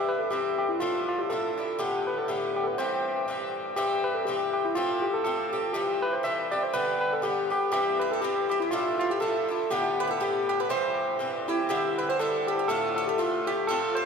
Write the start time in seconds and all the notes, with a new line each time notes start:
Already playing: G2 E3 C4 E4 G4
0.09 B4
0.19 A4
0.30 G2 E3 C4 E4 G4
0.58 G4
0.69 E4
0.80 A2 F3 D4 E4 F4
1.08 F4
1.19 G4
1.30 A2 F3 D4 E4 A4
1.58 F3 D4 E4
1.79 A2 D3 B3 G4
2.07 B4
2.18 A4
2.28 A2 D3 B3 G4
2.53 G4 A4
2.64 A4 B4
2.78 G2 E3 C4 G4 C5
3.28 G2 E3 C4 G4
3.76 G2 E3 C4 G4
4.04 B4
4.14 A4
4.25 G2 E3 C4 G4
4.54 G4
4.65 E4
4.75 A2 F3 C4 F4 G4
5.02 G4
5.14 A4
5.24 A2 F3 C4 G4 A4
5.53 F3 C4 G4
5.73 G2 E3 C4 G4
6.02 B4
6.13 C5
6.23 G2 E3 C4 G4 E5
6.51 E3 C4 G4 D5
6.63 C5
6.74 G2 D3 B3 G4 B4
7.01 B4
7.13 A4
7.22 G2 D3 B3 G4
7.50 D3 B3 G4
7.72 G2 E3 C4 G4
8.00 B4
8.11 A4
8.21 G2 E3 C4 G4
8.49 E3 C4 G4
8.60 E4
8.71 A2 F3 D4 E4 F4
8.99 F4
9.10 G4
9.20 A2 F3 D4 E4 A4
9.49 F3 D4 E4
9.70 A2 D3 B3 G4
10.00 B4
10.07 A4 B4
10.20 A2 D3 B3 G4
10.49 G4
10.60 B4
10.69 G2 E3 C4 G4 C5
11.19 G2 E3 C4 G4
11.48 E3 C4 E4 G4
11.69 G2 D3 C4 E4 G4
11.98 B4
12.09 C5
12.19 G2 D3 C4 E4 A4
12.47 G4
12.58 G4
12.68 A2 D3 A3 F4 A4
12.96 A4
13.07 G4
13.18 A2 D3 A3 F4
13.47 D3 A3 F4 G4
13.67 A2 F3 C4 F4 A4
13.95 C5